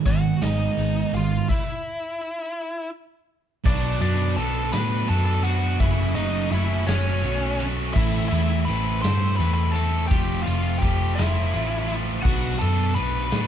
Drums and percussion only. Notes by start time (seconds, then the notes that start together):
0.05 kick, closed hi-hat
0.42 snare, closed hi-hat
0.78 closed hi-hat
1.14 closed hi-hat
1.50 kick, crash
3.66 kick, crash
4.02 ride
4.37 ride
4.73 snare, ride
5.09 ride
5.45 ride
5.80 kick, ride
6.16 ride
6.52 ride
6.88 snare, ride
7.24 ride
7.60 ride
7.96 kick, crash
8.32 ride
8.68 ride
9.04 snare, ride
9.40 ride
9.76 ride
10.11 kick, ride
10.47 ride
10.82 kick, ride
11.19 snare, ride
11.54 ride
11.90 ride
12.25 kick, crash
12.61 ride
12.96 ride
13.32 snare, ride